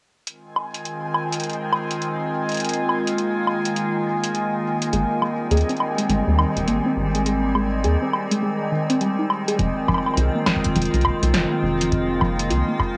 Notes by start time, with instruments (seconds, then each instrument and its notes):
0.27 ambient pad D#3 G#3 C4 F4, synth texture G#5, closed hi-hat
0.56 high woodblock
0.74 closed hi-hat
0.85 closed hi-hat
1.14 high woodblock
1.32 closed hi-hat
1.40 closed hi-hat
1.44 closed hi-hat
1.50 closed hi-hat
1.53 closed hi-hat
1.73 high woodblock
1.91 closed hi-hat
2.02 closed hi-hat
2.49 closed hi-hat
2.52 closed hi-hat
2.54 closed hi-hat
2.57 ambient pad A#3, closed hi-hat
2.60 closed hi-hat
2.65 closed hi-hat
2.69 closed hi-hat
2.73 closed hi-hat
2.89 high woodblock
3.07 closed hi-hat
3.18 closed hi-hat
3.47 high woodblock
3.66 closed hi-hat
3.77 closed hi-hat
4.24 closed hi-hat
4.35 closed hi-hat
4.82 closed hi-hat
4.93 analog synth bass G#1, ambient pad G3 C4, synth arpeggio sound G#3, closed hi-hat
5.22 synth arpeggio sound G#3, high woodblock
5.51 analog synth bass D#2, synth arpeggio sound G#4, closed hi-hat
5.57 closed hi-hat
5.61 closed hi-hat
5.69 synth arpeggio sound C4, closed hi-hat
5.77 closed hi-hat, high woodblock
5.98 synth arpeggio sound G#3, closed hi-hat
6.09 analog synth bass G#1, synth arpeggio sound G#3, closed hi-hat
6.28 analog synth bass D#2
6.38 synth arpeggio sound D#3, high woodblock
6.57 analog synth bass D#1, closed hi-hat
6.68 analog synth bass G#1, synth arpeggio sound A#3, closed hi-hat
6.86 synth arpeggio sound C4
6.97 analog synth bass G#1
7.15 synth arpeggio sound G#3, closed hi-hat
7.26 synth arpeggio sound G#3, closed hi-hat
7.55 synth arpeggio sound G#3, high woodblock
7.84 analog synth bass D#2, synth arpeggio sound G#4, closed hi-hat
8.02 synth arpeggio sound C4
8.13 high woodblock
8.31 synth arpeggio sound G#3, closed hi-hat
8.43 synth arpeggio sound G#3
8.72 synth arpeggio sound D#3
8.90 synth arpeggio sound C4, closed hi-hat
9.01 synth arpeggio sound G3, closed hi-hat
9.19 synth arpeggio sound D#4
9.30 high woodblock
9.48 synth arpeggio sound G#4, closed hi-hat
9.59 analog synth bass F1, ambient pad D#3 G#3 C4 F4, synth arpeggio sound F3, kick, closed hi-hat
9.88 synth arpeggio sound F3, kick, high woodblock
9.94 high woodblock
9.98 high woodblock
10.06 high woodblock
10.14 analog synth bass C2, synth arpeggio sound F4, closed hi-hat, high woodblock
10.35 synth arpeggio sound A#3
10.46 kick, snare, high woodblock
10.56 kick
10.64 synth arpeggio sound F3, kick, closed hi-hat
10.75 analog synth bass F1, synth arpeggio sound F3, closed hi-hat
10.82 closed hi-hat
10.85 closed hi-hat
10.94 analog synth bass C2, closed hi-hat
11.01 synth arpeggio sound C3, kick, closed hi-hat, high woodblock
11.23 analog synth bass C2, closed hi-hat
11.34 analog synth bass F1, synth arpeggio sound G3, snare, closed hi-hat
11.52 synth arpeggio sound A#3
11.63 analog synth bass F1
11.81 synth arpeggio sound F3, closed hi-hat
11.92 synth arpeggio sound F3, ambient pad A#3, kick, closed hi-hat
12.21 synth arpeggio sound F3, kick, high woodblock
12.39 closed hi-hat
12.50 analog synth bass C2, synth arpeggio sound F4, closed hi-hat
12.68 synth arpeggio sound A#3
12.79 kick, high woodblock